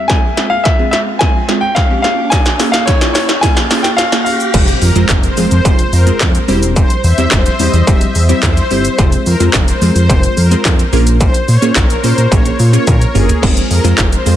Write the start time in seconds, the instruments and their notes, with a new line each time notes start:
Already playing: riser
0.08 synth pluck G#3 C4 F4 G#4, grand piano G#5, kick, snare, closed hi-hat
0.37 synth pluck G#3 C4 F4 G#4, snare, closed hi-hat
0.50 grand piano F5
0.64 grand piano E5, kick, snare, closed hi-hat
0.79 synth pluck G#3 C4 F4 G#4
0.91 grand piano E5, snare, closed hi-hat
1.19 synth pluck G#3 C4 F4 G#4, grand piano G#5, kick, snare, closed hi-hat
1.48 synth pluck G#3 C4 F4 G#4, snare, closed hi-hat
1.61 grand piano G5
1.75 grand piano F5, kick, snare, closed hi-hat
1.90 synth pluck G#3 C4 F4 G4
2.02 synth pluck A#3 C#4 F4 G#4, grand piano F5, snare, closed hi-hat
2.30 grand piano G#5, kick, snare, closed hi-hat, shaker
2.46 snare, shaker
2.59 synth pluck A#3 C#4 F4 G#4, snare, open hi-hat, shaker
2.72 grand piano F5, snare, shaker
2.86 grand piano C#5, kick, snare, closed hi-hat, shaker
3.01 synth pluck A#3 C#4 F4 G#4, snare, shaker
3.14 grand piano C#5, snare, open hi-hat, shaker
3.29 snare, shaker
3.41 synth pluck A#3 C#4 F4 G#4, grand piano G#5, kick, snare, closed hi-hat, shaker
3.56 snare, shaker
3.71 synth pluck A#3 C#4 F4 G#4, snare, open hi-hat, shaker
3.83 grand piano G5, snare, shaker
3.97 grand piano F5, snare, closed hi-hat, shaker
4.12 synth pluck A#3 C#4 F4 G#4, snare, shaker
4.25 grand piano F5, open hi-hat, shaker
4.40 shaker
4.54 analog synth bass F1, synth pluck G#3 C4 F4 G#4 C5, kick, closed hi-hat, crash, impact, shaker
4.68 closed hi-hat, shaker
4.82 analog synth bass F2, supersaw synth A#4, open hi-hat, shaker
4.96 analog synth bass F2, synth pluck G#3 C4 F4 G#4 C5, closed hi-hat, shaker
5.09 analog synth bass F1, kick, snare, clap, closed hi-hat, shaker
5.23 supersaw synth C5, closed hi-hat, shaker
5.37 analog synth bass F2, synth pluck G#3 C4 F4 G#4 C5, open hi-hat, shaker
5.51 analog synth bass F2, supersaw synth C5, closed hi-hat, shaker
5.65 analog synth bass F1, synth pluck G#3 C4 F4 G#4 C5, kick, closed hi-hat, shaker
5.79 closed hi-hat, shaker
5.93 analog synth bass F2, supersaw synth A#4, open hi-hat, shaker
6.07 synth pluck G#3 C4 F4 G#4 C5, closed hi-hat, shaker
6.20 analog synth bass F2, kick, snare, clap, closed hi-hat, shaker
6.35 closed hi-hat, shaker
6.48 analog synth bass E1, synth pluck G3 C4 E4 G4 C5, open hi-hat, shaker
6.63 closed hi-hat, shaker
6.76 supersaw synth C5, kick, closed hi-hat, shaker
6.90 closed hi-hat, shaker
7.04 analog synth bass E2, supersaw synth E5, open hi-hat, shaker
7.18 analog synth bass E2, synth pluck G3 C4 E4 G4 C5, closed hi-hat, shaker
7.31 analog synth bass E1, supersaw synth C5, kick, snare, clap, closed hi-hat, shaker
7.46 closed hi-hat, shaker
7.59 analog synth bass E2, synth pluck G3 C4 E4 G4 C5, supersaw synth D#5, open hi-hat, shaker
7.73 analog synth bass E2, closed hi-hat, shaker
7.87 analog synth bass E1, synth pluck G3 C4 E4 G4 C5, supersaw synth E5, kick, closed hi-hat, shaker
8.01 closed hi-hat, shaker
8.15 analog synth bass E2, open hi-hat, shaker
8.29 synth pluck G3 C4 E4 G4 C5, supersaw synth E5, closed hi-hat, shaker
8.43 analog synth bass E2, supersaw synth C5, kick, snare, clap, closed hi-hat, shaker
8.57 closed hi-hat, shaker
8.71 analog synth bass G1, synth pluck G3 C4 E4 G4 C5, open hi-hat, shaker
8.85 closed hi-hat, shaker
8.98 analog synth bass F1, synth pluck G#3 C4 F4 G#4 C5, kick, closed hi-hat, shaker
9.12 closed hi-hat, shaker
9.26 analog synth bass F2, supersaw synth A#4, open hi-hat, shaker
9.40 analog synth bass F2, synth pluck G#3 C4 F4 G#4 C5, closed hi-hat, shaker
9.53 analog synth bass F1, kick, snare, clap, closed hi-hat, shaker
9.68 supersaw synth C5, closed hi-hat, shaker
9.82 analog synth bass F2, synth pluck G#3 C4 F4 G#4 C5, open hi-hat, shaker
9.96 analog synth bass F2, supersaw synth C5, closed hi-hat, shaker
10.10 analog synth bass F1, synth pluck G#3 C4 F4 G#4 A#4, kick, closed hi-hat, shaker
10.23 closed hi-hat, shaker
10.37 analog synth bass F2, supersaw synth A#4, open hi-hat, shaker
10.51 synth pluck G#3 C4 F4 G#4 C5, closed hi-hat, shaker
10.65 analog synth bass F2, kick, snare, clap, closed hi-hat, shaker
10.79 closed hi-hat, shaker
10.93 analog synth bass A#1, synth pluck A#3 C#4 F4 G#4 A#4, open hi-hat, shaker
11.07 closed hi-hat, shaker
11.20 supersaw synth C5, kick, closed hi-hat, shaker
11.34 closed hi-hat, shaker
11.48 analog synth bass A#2, supersaw synth C#5, open hi-hat, shaker
11.62 analog synth bass A#2, synth pluck A#3 C#4 F4 G#4 C#5, closed hi-hat, shaker
11.75 analog synth bass A#1, supersaw synth A#4, kick, snare, clap, closed hi-hat, shaker
11.90 closed hi-hat, shaker
12.03 analog synth bass A#2, synth pluck A#3 C#4 F4 G#4 C5, supersaw synth C5, open hi-hat, shaker
12.18 analog synth bass A#2, closed hi-hat, shaker
12.31 analog synth bass A#1, synth pluck A#3 C#4 F4 G#4 A#4, supersaw synth C#5, kick, closed hi-hat, shaker
12.46 closed hi-hat, shaker
12.59 analog synth bass A#2, open hi-hat, shaker
12.73 synth pluck A#3 C#4 F4 G#4 A#4, supersaw synth C#5, closed hi-hat, shaker
12.87 analog synth bass A#2, supersaw synth A#4, kick, closed hi-hat, high tom, shaker
13.02 closed hi-hat, shaker
13.14 analog synth bass G1, synth pluck A#3 C#4 F4 G#4 A#4, supersaw synth G#4, mid tom, open hi-hat, shaker
13.29 closed hi-hat, floor tom, shaker
13.42 analog synth bass F1, synth pluck G#3 C4 F4 G#4 C5, kick, crash
13.57 closed hi-hat, shaker
13.71 analog synth bass F2, supersaw synth A#4, open hi-hat, shaker
13.84 analog synth bass F2, synth pluck G#3 C4 F4 G#4 C5, closed hi-hat, shaker
13.98 analog synth bass F1, kick, snare, clap, closed hi-hat, shaker
14.12 supersaw synth C5, closed hi-hat, shaker
14.26 analog synth bass F2, synth pluck G#3 C4 F4 G#4 C5, open hi-hat, shaker